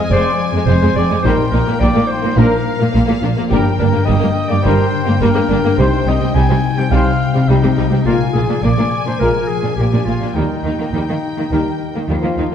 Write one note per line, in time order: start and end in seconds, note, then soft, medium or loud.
0.00 0.38 G#3 soft
0.00 0.94 C4 soft
0.00 0.66 C5 medium
0.00 0.10 D#5 medium
0.00 1.20 G#5 medium
0.00 0.13 D#6 medium
0.10 0.16 F1 medium
0.10 0.16 F2 medium
0.10 1.26 F3 medium
0.10 0.30 G#3 medium
0.10 0.16 G#3 medium
0.10 0.18 G#3 medium
0.10 0.30 C4 medium
0.10 0.30 C5 medium
0.10 0.47 D5 medium
0.10 0.48 D6 medium
0.39 1.26 G#3 medium
0.53 0.59 F2 medium
0.53 0.59 G#3 medium
0.53 0.61 G#3 medium
0.66 0.73 F1 medium
0.66 0.73 F2 medium
0.66 0.73 G#3 medium
0.66 0.93 C5 medium
0.66 1.26 C5 medium
0.66 0.99 C6 medium
0.81 0.88 F2 medium
0.81 0.87 G#3 medium
0.81 0.89 G#3 medium
0.95 1.01 F1 medium
0.95 1.02 F2 soft
0.95 1.02 G#3 medium
0.95 1.26 C4 medium
0.95 1.03 C4 medium
0.95 1.08 D5 medium
0.95 1.27 D6 medium
1.10 1.16 F2 medium
1.10 1.16 G#3 medium
1.23 1.30 A#1 medium
1.23 2.35 A#2 medium
1.23 1.30 A#2 medium
1.23 1.43 G3 medium
1.23 1.31 G3 medium
1.23 1.30 A#3 medium
1.23 1.44 D#4 medium
1.23 1.45 A#4 medium
1.23 1.36 C5 medium
1.23 2.35 G5 medium
1.23 1.56 C6 medium
1.50 1.58 A#1 medium
1.50 1.58 A#2 medium
1.50 2.64 A#3 medium
1.50 1.59 A#3 soft
1.50 1.59 D#4 medium
1.50 1.81 A#4 medium
1.55 1.82 A#5 medium
1.67 1.72 A#2 medium
1.67 1.72 A#3 medium
1.67 1.73 A#3 soft
1.79 1.87 A#1 medium
1.79 1.87 A#2 medium
1.79 1.87 G3 medium
1.79 1.87 A#3 medium
1.79 2.39 D#4 medium
1.79 2.09 D5 medium
1.79 2.12 D6 medium
1.94 2.01 A#2 medium
1.94 2.00 A#3 soft
1.94 2.01 A#3 medium
2.07 2.39 G3 medium
2.07 2.39 C5 medium
2.07 2.39 C6 medium
2.23 2.29 A#2 medium
2.23 2.28 A#3 medium
2.23 2.29 A#3 soft
2.36 2.43 A#1 medium
2.36 3.53 A#2 medium
2.36 2.43 A#2 medium
2.36 2.57 F3 medium
2.36 2.42 A#3 medium
2.36 2.44 A#3 medium
2.36 2.57 D4 medium
2.36 2.94 A#4 medium
2.36 2.58 A#4 medium
2.36 3.51 F5 medium
2.36 2.94 A#5 medium
2.65 5.79 A#3 medium
2.79 2.86 A#2 medium
2.79 2.85 A#3 medium
2.79 2.86 A#3 medium
2.92 3.00 A#1 medium
2.92 3.00 A#2 medium
2.92 2.98 A#3 medium
2.92 3.00 A#3 medium
2.92 5.80 F4 medium
3.07 3.15 A#2 medium
3.07 3.13 A#3 medium
3.07 3.15 A#3 medium
3.22 3.28 A#1 medium
3.22 3.28 A#2 medium
3.22 3.53 F3 medium
3.22 3.29 A#3 medium
3.22 3.28 D4 medium
3.37 3.43 A#2 medium
3.37 3.42 A#3 medium
3.37 3.43 A#3 medium
3.50 3.57 G1 medium
3.50 4.62 G2 medium
3.50 3.57 G2 medium
3.50 3.56 G3 medium
3.50 3.70 G3 medium
3.50 3.57 A#3 medium
3.50 3.71 D4 medium
3.50 3.63 G4 medium
3.50 3.71 A#4 medium
3.50 8.02 G5 medium
3.50 3.77 G5 medium
3.78 3.85 G1 medium
3.78 3.86 G2 medium
3.78 4.92 D3 soft
3.78 3.86 A#3 medium
3.78 3.85 D4 soft
3.78 4.07 A#4 medium
3.78 4.06 A#5 medium
3.92 4.00 G2 medium
3.92 3.98 A#3 medium
3.92 3.99 A#3 medium
4.05 4.14 G1 medium
4.05 4.14 G2 medium
4.05 4.12 G3 medium
4.05 4.13 A#3 medium
4.05 4.50 D#5 loud
4.05 4.52 D#6 medium
4.19 4.28 G2 medium
4.19 4.25 A#3 medium
4.19 4.28 A#3 medium
4.35 5.48 G3 medium
4.49 4.57 G2 medium
4.49 4.55 A#3 medium
4.49 4.56 A#3 medium
4.49 4.65 D5 medium
4.49 4.64 D6 medium
4.63 4.70 G1 medium
4.63 5.79 G2 medium
4.63 4.70 G2 medium
4.63 4.69 G3 medium
4.63 4.85 G3 medium
4.63 4.71 A#3 medium
4.63 4.85 D4 medium
4.63 4.85 A#4 medium
4.63 5.20 C5 medium
4.63 5.20 C6 medium
4.93 5.80 D3 medium
5.05 5.13 G2 medium
5.05 5.11 A#3 medium
5.05 5.13 A#3 medium
5.21 5.27 G1 medium
5.21 5.27 G2 medium
5.21 5.26 G3 medium
5.21 5.27 A#3 loud
5.21 5.80 D4 medium
5.21 5.77 A#4 medium
5.21 5.76 A#5 medium
5.35 5.42 G2 medium
5.35 5.40 A#3 medium
5.35 5.41 A#3 medium
5.49 5.55 G1 medium
5.49 5.55 G2 medium
5.49 6.62 G3 medium
5.49 5.56 A#3 medium
5.49 5.55 D4 medium
5.64 5.70 G2 medium
5.64 5.70 A#3 medium
5.78 5.84 C2 medium
5.78 5.83 C3 medium
5.78 6.90 C3 medium
5.78 5.84 G3 medium
5.78 5.98 G3 medium
5.78 5.84 G3 medium
5.78 5.98 D#4 medium
5.78 5.98 C5 medium
5.78 6.10 C5 medium
5.78 6.05 C6 medium
6.06 6.12 C2 medium
6.06 6.12 C3 medium
6.06 6.13 G3 soft
6.06 7.19 C4 medium
6.06 6.14 D#4 medium
6.06 6.34 D#5 medium
6.06 6.14 D#6 medium
6.21 6.26 C3 soft
6.21 6.27 G3 soft
6.21 6.28 C4 medium
6.34 6.41 C2 medium
6.34 6.40 C3 medium
6.34 6.41 G3 medium
6.34 7.48 D#4 medium
6.34 6.80 G#5 medium
6.34 6.79 G#6 medium
6.49 6.55 C3 medium
6.49 6.56 G3 medium
6.49 6.54 C4 soft
6.63 7.77 G3 medium
6.77 6.82 C3 soft
6.77 6.83 G3 soft
6.77 6.84 C4 medium
6.77 6.91 G5 medium
6.77 6.92 G6 medium
6.91 6.97 C2 medium
6.91 8.08 C3 medium
6.91 6.97 C3 medium
6.91 6.97 G3 medium
6.91 7.11 G3 medium
6.91 6.97 G3 medium
6.91 7.11 D#4 medium
6.91 7.12 C5 medium
6.91 7.51 F5 medium
6.91 7.51 F6 medium
7.20 8.08 C4 soft
7.34 7.41 C3 medium
7.34 7.40 G3 medium
7.34 7.40 C4 soft
7.49 7.55 C2 medium
7.49 7.55 C3 medium
7.49 7.55 G3 medium
7.49 8.05 D#4 medium
7.49 8.07 D#5 medium
7.63 7.69 C3 medium
7.63 7.69 G3 soft
7.63 7.69 C4 medium
7.77 7.83 C2 soft
7.77 7.83 C3 soft
7.77 7.82 G3 medium
7.77 7.83 D#4 medium
7.91 7.98 C3 soft
7.91 7.97 G3 medium
7.91 7.98 C4 medium
8.06 8.11 A#1 medium
8.06 8.12 A#2 medium
8.06 9.19 A#2 medium
8.06 8.26 G#3 medium
8.06 8.12 A#3 medium
8.06 8.13 A#3 medium
8.06 8.18 F4 medium
8.06 8.26 F4 medium
8.06 8.26 A#4 medium
8.06 8.37 F5 medium
8.06 10.32 G#5 medium
8.33 8.41 A#1 soft
8.33 8.40 A#2 soft
8.33 9.47 F3 soft
8.33 8.40 A#3 soft
8.33 8.41 F4 soft
8.33 8.64 G#4 medium
8.33 8.66 G#5 medium
8.49 8.55 A#2 soft
8.49 8.55 A#3 soft
8.49 8.54 D4 soft
8.63 8.69 A#1 medium
8.63 8.69 A#2 medium
8.63 8.69 A#3 medium
8.63 9.76 F4 soft
8.63 9.05 D5 medium
8.63 9.05 D6 medium
8.78 8.83 A#2 soft
8.78 8.83 A#3 soft
8.78 8.83 D4 soft
8.92 10.06 A#3 soft
9.06 9.12 A#2 soft
9.06 9.12 A#3 soft
9.06 9.12 D4 soft
9.06 9.21 C5 medium
9.06 9.20 C6 medium
9.19 9.27 A#1 medium
9.19 10.37 A#2 soft
9.19 9.26 A#2 medium
9.19 9.41 G#3 medium
9.19 9.26 A#3 medium
9.19 9.27 A#3 medium
9.19 9.41 F4 medium
9.19 9.49 A#4 medium
9.19 9.40 A#4 medium
9.19 9.48 A#5 medium
9.48 10.37 F3 soft
9.48 9.76 G#4 medium
9.48 9.77 G#5 soft
9.63 9.68 A#2 soft
9.63 9.70 A#3 soft
9.63 9.70 D4 soft
9.76 9.83 A#1 medium
9.76 9.84 A#2 medium
9.76 9.84 A#3 medium
9.76 9.85 A#3 medium
9.76 10.06 G4 medium
9.76 9.85 G5 soft
9.93 9.98 A#2 soft
9.93 9.99 A#3 soft
9.93 10.00 D4 soft
10.05 10.12 A#1 soft
10.05 10.12 A#2 soft
10.05 10.63 A#3 soft
10.05 10.13 A#3 soft
10.05 10.36 F4 medium
10.05 10.14 F4 soft
10.05 10.35 F5 medium
10.21 10.27 A#2 soft
10.21 10.27 A#3 soft
10.21 10.28 D4 soft
10.34 10.41 D#2 soft
10.34 11.49 D#3 soft
10.34 10.41 D#3 soft
10.34 10.55 G3 soft
10.34 10.43 G3 medium
10.34 10.42 A#3 medium
10.34 12.37 D#4 medium
10.34 10.56 D#4 soft
10.34 10.55 A#4 soft
10.34 12.05 D#5 medium
10.34 12.46 G5 soft
10.64 10.70 D#2 soft
10.64 10.70 D#3 soft
10.64 11.79 A#3 soft
10.64 10.72 A#3 soft
10.64 10.72 D#4 soft
10.79 10.84 D#3 soft
10.79 10.85 A#3 soft
10.79 10.86 A#3 soft
10.92 10.98 D#2 soft
10.92 10.99 D#3 medium
10.92 11.00 G3 soft
10.92 11.00 A#3 soft
10.92 12.07 G4 soft
11.09 11.15 D#3 soft
11.09 11.14 A#3 soft
11.22 12.36 D#4 soft
11.37 11.43 D#3 soft
11.37 11.43 A#3 soft
11.37 11.44 A#3 soft
11.50 11.56 D#2 soft
11.50 12.55 D#3 soft
11.50 11.57 D#3 soft
11.50 11.57 G3 soft
11.50 11.71 G3 soft
11.50 11.57 A#3 soft
11.50 11.71 D#4 soft
11.50 11.70 A#4 soft
11.80 12.55 A#3 soft
11.94 12.01 D#3 soft
11.94 12.00 A#3 soft
12.08 12.14 D#2 soft
12.08 12.14 D#3 medium
12.08 12.55 F3 medium
12.08 12.14 G3 soft
12.08 12.15 A#3 soft
12.08 12.55 F4 soft
12.08 12.55 G4 soft
12.08 12.55 F5 soft
12.22 12.29 D#3 soft
12.22 12.28 A#3 soft
12.37 12.43 D#2 soft
12.37 12.43 D#3 soft
12.37 12.43 A#3 soft
12.37 12.55 D#4 soft
12.37 12.43 D#4 soft
12.51 12.55 A#3 soft